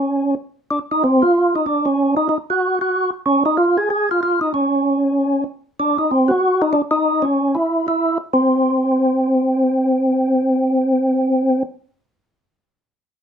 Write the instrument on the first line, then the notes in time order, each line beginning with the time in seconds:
tonewheel organ
Already playing: C#4
0.71 D4
0.91 D#4
1.04 C4
1.22 F4
1.55 D#4
1.66 D4
1.85 C#4
2.17 D#4
2.29 D#4
2.50 F#4
2.81 F#4
3.26 C#4
3.46 D#4
3.57 F4
3.78 G#4
3.90 G#4
4.11 F4
4.23 F4
4.41 D#4
4.54 C#4
5.80 D4
5.98 D#4
6.11 C4
6.28 F#4
6.62 D#4
6.73 D4
6.91 D#4
7.22 C#4
7.55 E4
7.88 E4
8.33 C4